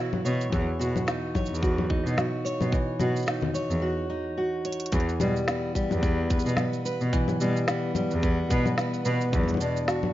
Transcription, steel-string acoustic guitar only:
0, 0, Header, 1, 2, 480
1, 0, Start_track
1, 0, Tempo, 550459
1, 458, Time_signature, 4, 2, 24, 8
1, 8834, End_track
2, 0, Start_track
2, 0, Title_t, "Steel-string acoustic guitar"
2, 0, Program_c, 0, 25
2, 0, Note_on_c, 0, 52, 87
2, 0, Note_on_c, 0, 64, 64
2, 0, Note_on_c, 0, 66, 57
2, 0, Note_on_c, 0, 73, 64
2, 213, Note_off_c, 0, 73, 0
2, 217, Note_on_c, 0, 73, 63
2, 445, Note_off_c, 0, 52, 0
2, 456, Note_on_c, 0, 52, 86
2, 511, Note_off_c, 0, 64, 0
2, 689, Note_off_c, 0, 66, 0
2, 693, Note_on_c, 0, 66, 62
2, 930, Note_on_c, 0, 63, 60
2, 956, Note_off_c, 0, 73, 0
2, 1174, Note_on_c, 0, 73, 70
2, 1406, Note_off_c, 0, 66, 0
2, 1416, Note_on_c, 0, 66, 67
2, 1642, Note_off_c, 0, 63, 0
2, 1653, Note_on_c, 0, 63, 61
2, 1884, Note_off_c, 0, 66, 0
2, 1895, Note_on_c, 0, 66, 63
2, 2123, Note_off_c, 0, 73, 0
2, 2133, Note_on_c, 0, 73, 64
2, 2369, Note_off_c, 0, 52, 0
2, 2372, Note_on_c, 0, 52, 84
2, 2602, Note_off_c, 0, 66, 0
2, 2612, Note_on_c, 0, 66, 58
2, 2837, Note_off_c, 0, 63, 0
2, 2847, Note_on_c, 0, 63, 61
2, 3079, Note_off_c, 0, 73, 0
2, 3089, Note_on_c, 0, 73, 68
2, 3320, Note_off_c, 0, 66, 0
2, 3330, Note_on_c, 0, 66, 70
2, 3562, Note_off_c, 0, 63, 0
2, 3572, Note_on_c, 0, 63, 58
2, 3805, Note_off_c, 0, 66, 0
2, 3815, Note_on_c, 0, 66, 64
2, 4045, Note_off_c, 0, 73, 0
2, 4056, Note_on_c, 0, 73, 62
2, 4291, Note_off_c, 0, 52, 0
2, 4294, Note_on_c, 0, 52, 88
2, 4349, Note_off_c, 0, 63, 0
2, 4350, Note_off_c, 0, 66, 0
2, 4350, Note_off_c, 0, 73, 0
2, 4536, Note_on_c, 0, 55, 67
2, 4774, Note_on_c, 0, 59, 62
2, 5004, Note_off_c, 0, 55, 0
2, 5015, Note_on_c, 0, 55, 64
2, 5254, Note_off_c, 0, 59, 0
2, 5257, Note_on_c, 0, 59, 68
2, 5500, Note_on_c, 0, 71, 62
2, 5732, Note_off_c, 0, 59, 0
2, 5735, Note_on_c, 0, 59, 60
2, 5973, Note_off_c, 0, 71, 0
2, 5977, Note_on_c, 0, 71, 61
2, 6205, Note_off_c, 0, 52, 0
2, 6216, Note_on_c, 0, 52, 88
2, 6445, Note_off_c, 0, 55, 0
2, 6455, Note_on_c, 0, 55, 62
2, 6695, Note_off_c, 0, 59, 0
2, 6698, Note_on_c, 0, 59, 67
2, 6924, Note_off_c, 0, 55, 0
2, 6935, Note_on_c, 0, 55, 65
2, 7172, Note_off_c, 0, 59, 0
2, 7176, Note_on_c, 0, 59, 71
2, 7415, Note_off_c, 0, 71, 0
2, 7418, Note_on_c, 0, 71, 66
2, 7651, Note_off_c, 0, 59, 0
2, 7654, Note_on_c, 0, 59, 66
2, 7893, Note_off_c, 0, 71, 0
2, 7896, Note_on_c, 0, 71, 69
2, 8134, Note_on_c, 0, 40, 82
2, 8137, Note_off_c, 0, 52, 0
2, 8190, Note_off_c, 0, 55, 0
2, 8374, Note_on_c, 0, 62, 65
2, 8611, Note_off_c, 0, 59, 0
2, 8614, Note_on_c, 0, 66, 65
2, 8834, Note_off_c, 0, 40, 0
2, 8834, Note_off_c, 0, 62, 0
2, 8834, Note_off_c, 0, 66, 0
2, 8834, Note_off_c, 0, 71, 0
2, 8834, End_track
0, 0, End_of_file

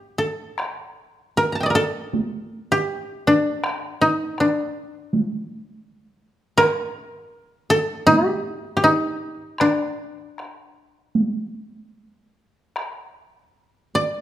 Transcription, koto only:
0, 0, Header, 1, 2, 480
1, 0, Start_track
1, 0, Tempo, 777202
1, 353, Time_signature, 4, 2, 24, 8
1, 1781, Tempo, 748130
1, 3221, Tempo, 729927
1, 4661, Tempo, 760456
1, 5621, Tempo, 772201
1, 7061, Tempo, 793651
1, 8910, End_track
2, 0, Start_track
2, 0, Title_t, "Koto"
2, 0, Program_c, 0, 107
2, 0, Note_on_c, 0, 67, 40
2, 113, Note_on_c, 0, 69, 57
2, 848, Note_on_c, 0, 70, 68
2, 885, Note_off_c, 0, 69, 0
2, 941, Note_on_c, 0, 82, 32
2, 956, Note_off_c, 0, 67, 0
2, 959, Note_on_c, 0, 81, 32
2, 991, Note_on_c, 0, 79, 34
2, 1007, Note_on_c, 0, 75, 40
2, 1024, Note_on_c, 0, 74, 44
2, 1049, Note_off_c, 0, 70, 0
2, 1051, Note_on_c, 0, 70, 46
2, 1081, Note_on_c, 0, 69, 76
2, 1088, Note_off_c, 0, 81, 0
2, 1118, Note_off_c, 0, 82, 0
2, 1678, Note_on_c, 0, 67, 72
2, 1824, Note_off_c, 0, 79, 0
2, 1969, Note_off_c, 0, 75, 0
2, 2022, Note_off_c, 0, 74, 0
2, 2031, Note_on_c, 0, 62, 64
2, 2202, Note_off_c, 0, 70, 0
2, 2275, Note_off_c, 0, 69, 0
2, 2507, Note_on_c, 0, 63, 63
2, 2545, Note_off_c, 0, 62, 0
2, 2755, Note_on_c, 0, 62, 56
2, 2794, Note_off_c, 0, 63, 0
2, 2983, Note_off_c, 0, 67, 0
2, 4173, Note_on_c, 0, 70, 85
2, 4339, Note_off_c, 0, 62, 0
2, 4903, Note_on_c, 0, 69, 89
2, 4940, Note_off_c, 0, 70, 0
2, 5133, Note_on_c, 0, 67, 87
2, 5573, Note_off_c, 0, 67, 0
2, 5575, Note_on_c, 0, 67, 53
2, 5620, Note_on_c, 0, 63, 76
2, 6097, Note_off_c, 0, 69, 0
2, 6099, Note_on_c, 0, 62, 60
2, 6137, Note_off_c, 0, 63, 0
2, 6844, Note_off_c, 0, 67, 0
2, 7592, Note_off_c, 0, 62, 0
2, 8751, Note_on_c, 0, 74, 73
2, 8910, Note_off_c, 0, 74, 0
2, 8910, End_track
0, 0, End_of_file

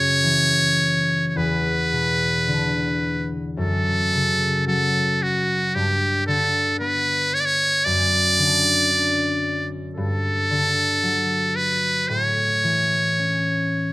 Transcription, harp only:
0, 0, Header, 1, 2, 480
1, 0, Start_track
1, 0, Tempo, 1107011
1, 1547, Time_signature, 4, 2, 24, 8
1, 2020, Tempo, 1061947
1, 5380, Tempo, 1098901
1, 6181, End_track
2, 0, Start_track
2, 0, Title_t, "Harp"
2, 0, Program_c, 0, 46
2, 0, Note_on_c, 0, 42, 55
2, 0, Note_on_c, 0, 49, 43
2, 0, Note_on_c, 0, 57, 38
2, 102, Note_on_c, 0, 52, 49
2, 270, Note_off_c, 0, 57, 0
2, 589, Note_on_c, 0, 40, 64
2, 608, Note_off_c, 0, 42, 0
2, 608, Note_off_c, 0, 49, 0
2, 608, Note_off_c, 0, 52, 0
2, 834, Note_on_c, 0, 47, 47
2, 1072, Note_on_c, 0, 50, 49
2, 1088, Note_off_c, 0, 47, 0
2, 1549, Note_on_c, 0, 42, 64
2, 1568, Note_off_c, 0, 40, 0
2, 1568, Note_off_c, 0, 50, 0
2, 1792, Note_on_c, 0, 49, 43
2, 2025, Note_on_c, 0, 54, 54
2, 2514, Note_on_c, 0, 43, 61
2, 2527, Note_off_c, 0, 42, 0
2, 2527, Note_off_c, 0, 49, 0
2, 2527, Note_off_c, 0, 54, 0
2, 2751, Note_on_c, 0, 50, 53
2, 2989, Note_on_c, 0, 59, 53
2, 3466, Note_on_c, 0, 42, 70
2, 3486, Note_off_c, 0, 43, 0
2, 3486, Note_off_c, 0, 50, 0
2, 3704, Note_on_c, 0, 50, 47
2, 3939, Note_on_c, 0, 62, 55
2, 4393, Note_off_c, 0, 59, 0
2, 4423, Note_on_c, 0, 43, 63
2, 4440, Note_off_c, 0, 42, 0
2, 4440, Note_off_c, 0, 50, 0
2, 4663, Note_on_c, 0, 50, 48
2, 4900, Note_on_c, 0, 54, 52
2, 5204, Note_off_c, 0, 62, 0
2, 5381, Note_on_c, 0, 45, 64
2, 5401, Note_off_c, 0, 43, 0
2, 5401, Note_off_c, 0, 50, 0
2, 5401, Note_off_c, 0, 54, 0
2, 5618, Note_on_c, 0, 52, 44
2, 5860, Note_on_c, 0, 61, 53
2, 6181, Note_off_c, 0, 45, 0
2, 6181, Note_off_c, 0, 52, 0
2, 6181, Note_off_c, 0, 61, 0
2, 6181, End_track
0, 0, End_of_file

